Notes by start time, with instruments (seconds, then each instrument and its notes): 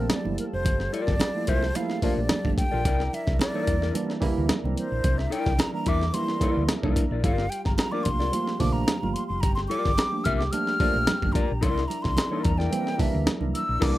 Already playing: tine electric piano F3 A3 A#3 C4, tonewheel organ F3 G3 A4, flute A#4
0.10 flute D5, snare, closed hi-hat, high conga
0.24 fingered electric bass G1, tine electric piano F3 A3 A#3 E4, high conga
0.38 flute A#4, closed hi-hat
0.52 fingered electric bass F1, tine electric piano A#3 D4, flute C5
0.65 fingered electric bass G1, kick, closed hi-hat, muted conga
0.80 snare
0.93 clean electric guitar F4 A#4 D5, flute D5, closed hi-hat
1.07 fingered electric bass G1, kick, snare
1.20 snare, closed hi-hat, high conga
1.34 tine electric piano F3 A3 A#3 E4
1.47 fingered electric bass C2, clean electric guitar F4 A#4 E5, flute C5, kick, closed hi-hat
1.63 snare
1.75 tine electric piano F3 A3 A#3 E4, flute F5, closed hi-hat, muted conga
1.90 snare
2.02 tine electric piano F3 A3 A#3 D4, clean electric guitar F4 A#4 D5, muted fingered electric bass stroke, kick, open hi-hat, muted conga
2.17 fingered electric bass A#1, flute D5
2.29 snare, closed hi-hat, high conga
2.44 fingered electric bass G1, tine electric piano F3 A3 A#3 D4, kick, high conga
2.57 flute G5, kick, closed hi-hat
2.71 fingered electric bass A#1, tine electric piano A#3 D4, clean electric guitar F4 A#4 D5
2.85 fingered electric bass C2, tonewheel organ D4 E4 A#4, clean electric guitar E4 A#4 D5, kick, closed hi-hat, muted conga
3.00 snare
3.13 flute E5, closed hi-hat, muted conga
3.27 fingered electric bass C2, kick, snare
3.39 flute D5, snare, closed hi-hat, high conga
3.53 tine electric piano E3 G3 A#3 D4, clean electric guitar E4 A#4 D5
3.67 fingered electric bass E2, kick, closed hi-hat
3.82 clean electric guitar E4 A#4 D5, snare
3.94 tine electric piano E3 G3 A#3 D4, closed hi-hat, muted conga
4.10 snare
4.21 tine electric piano E3 G3 A#3 E4, muted fingered electric bass stroke, kick, open hi-hat, muted conga, low conga
4.38 fingered electric bass D2
4.49 muted fingered electric bass stroke, snare, closed hi-hat, high conga
4.63 fingered electric bass C2, tine electric piano E3 G3 A#3 C4, high conga
4.77 flute C5, closed hi-hat
4.92 fingered electric bass A#1
5.04 fingered electric bass C2, kick, closed hi-hat, muted conga
5.18 flute E5, snare
5.30 clean electric guitar E4 A#4 D5, flute G5, closed hi-hat
5.46 fingered electric bass C2, kick, snare
5.59 flute A#5, snare, closed hi-hat, high conga
5.72 tine electric piano E3 G3 A#3 D4, flute A#5
5.86 fingered electric bass E2, clean electric guitar E4 A#4 E5, flute D6, kick, closed hi-hat
6.02 snare
6.12 tine electric piano E3 G3 A#3 E4, flute C6, closed hi-hat, muted conga
6.28 snare
6.39 tine electric piano E3 G3 A#3 E4, clean electric guitar E4 A#4 D5, muted fingered electric bass stroke, kick, closed hi-hat, muted conga
6.57 fingered electric bass D2
6.69 snare, closed hi-hat, high conga
6.82 fingered electric bass C2, tine electric piano E3 G3 A#3 D4, clean electric guitar E4 A#4 D5, kick, high conga
6.96 kick, closed hi-hat
7.10 fingered electric bass A#1, tine electric piano A#3 D4, clean electric guitar E4 A#4 D5
7.23 fingered electric bass G1, tonewheel organ G3 F4, clean electric guitar F4 A#4 D5, flute F5, kick, closed hi-hat, muted conga
7.38 snare
7.50 flute G5, closed hi-hat
7.65 fingered electric bass G1, flute A#5, kick, snare
7.77 flute A#5, snare, closed hi-hat, high conga
7.91 tine electric piano F3 A3 A#3 D4, clean electric guitar F4 A#4 D5, flute D6
8.03 fingered electric bass C2, flute C6, kick, closed hi-hat
8.20 clean electric guitar F4 A#4 D5, snare
8.32 tine electric piano F3 A3 A#3 F4, closed hi-hat, muted conga
8.47 snare
8.60 fingered electric bass A#1, tine electric piano F3 A3 A#3 D4, flute D6, kick, open hi-hat, muted conga, low conga
8.73 flute A#5
8.88 snare, closed hi-hat, high conga
9.02 fingered electric bass G1, tine electric piano F3 A3 A#3 F4, high conga
9.14 flute C6, closed hi-hat
9.27 fingered electric bass F1, tine electric piano A#3, flute C6
9.32 tine electric piano F4
9.41 fingered electric bass G1, tonewheel organ G4, flute A#5, kick, closed hi-hat, muted conga
9.55 flute C6, snare
9.68 clean electric guitar F4 A#4 D5, flute D6, closed hi-hat, muted conga
9.85 fingered electric bass G1, kick, snare
9.98 snare, closed hi-hat, high conga
10.11 tine electric piano F3 A3 A#3 D4
10.24 fingered electric bass C2, clean electric guitar F4 A#4 E5, flute F6, kick, closed hi-hat
10.37 flute D6, snare
10.52 tine electric piano F3 A3 A#3 D4, flute F6, closed hi-hat, muted conga
10.67 snare
10.80 tine electric piano F3 A3 A#3 D4, clean electric guitar F4 A#4 D5, muted fingered electric bass stroke, kick, open hi-hat, muted conga
10.96 fingered electric bass A#1
11.07 snare, closed hi-hat, high conga
11.22 fingered electric bass G1, tine electric piano F3 A3 A#3 D4, kick, high conga
11.32 clean electric guitar F4 A#4 D5, flute A#5, kick, closed hi-hat
11.51 fingered electric bass A#1
11.61 fingered electric bass C2, tonewheel organ D4 E4 A#4, clean electric guitar E4 A#4 D5, flute C6, kick, closed hi-hat, muted conga
11.78 snare
11.88 flute A#5, closed hi-hat, muted conga
12.02 fingered electric bass C2, flute C6, kick, snare
12.17 snare, closed hi-hat, high conga
12.31 tine electric piano E3 G3 A#3 D4, clean electric guitar E4 A#4 D5
12.43 fingered electric bass E2, flute A#5, kick, closed hi-hat
12.58 clean electric guitar E4 A#4 D5, flute G5, snare
12.71 tine electric piano E3 G3 A#3 C4, closed hi-hat, muted conga
12.87 snare
12.98 tine electric piano E3 G3 A#3 D4, flute E5, muted fingered electric bass stroke, kick, open hi-hat, muted conga, low conga
13.15 fingered electric bass D2
13.27 muted fingered electric bass stroke, snare, closed hi-hat, high conga
13.40 fingered electric bass C2, tine electric piano E3 G3 A#3 D4, high conga
13.55 flute E6, closed hi-hat
13.68 fingered electric bass A#1, tine electric piano A#3 D4
13.80 fingered electric bass C2, tine electric piano E3 G3 A#3 D4, clean electric guitar E4 A#4 D5, flute D6, kick, snare, crash